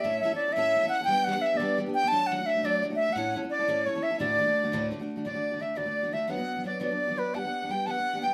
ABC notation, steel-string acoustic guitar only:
X:1
M:6/8
L:1/16
Q:3/8=115
K:D
V:1 name="Steel-string acoustic guitar"
[A,,A,CEA]2 [A,CEA] [CEA]2 [CEA] [A,,A,CEA]2 [A,CEA] [CEA]2 [CEA] | [G,B,DG]2 [G,B,DG] [B,DG]2 [B,DG] [G,B,DG]2 [G,B,DG] [B,DG]2 [B,DG] | [F,A,DF]2 [F,A,DF] [A,DF]2 [A,DF] [F,A,DF]2 [F,A,DF] [A,DF]2 [A,DF] | [A,,A,CEA]2 [A,CEA] [CEA]2 [CEA] [A,,A,CEA]2 [A,CEA] [CEA]2 [CEA] |
[D,,A,,D,A,DF]2 [D,A,DF] [D,A,DF]2 [D,A,DF] [D,,A,,D,A,DF]2 [D,A,DF] [D,A,DF]2 [D,A,DF] | [D,,A,,D,A,DF] [D,A,DF]2 [D,A,DF] [D,A,DF]2 [D,,A,,D,A,DF] [D,A,DF]2 [D,A,DF] [D,A,DF]2 | [D,,D,F,B,DF] [F,B,DF]2 [F,B,DF] [F,B,DF]2 [D,,D,F,B,DF] [F,B,DF]2 [F,B,DF] [F,B,DF]2 | [G,B,DG] [B,DG]2 [B,DG] [G,B,DG]2 [G,B,DG] [B,DG]2 [B,DG] [G,B,DG]2 |]